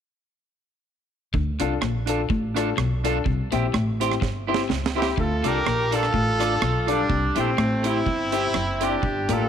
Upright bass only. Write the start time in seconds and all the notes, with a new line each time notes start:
1.34 D2
1.60 C2
1.82 A#1
2.30 A1
2.78 B1
3.26 C2
3.53 A#1
3.74 A1
4.22 G1
4.69 C#2
5.18 D2
5.44 C2
5.66 A#1
6.14 A1
6.62 B1
7.10 C2
7.36 A#1
7.58 A1
8.06 G1
8.54 F#1
9.03 G1
9.29 A1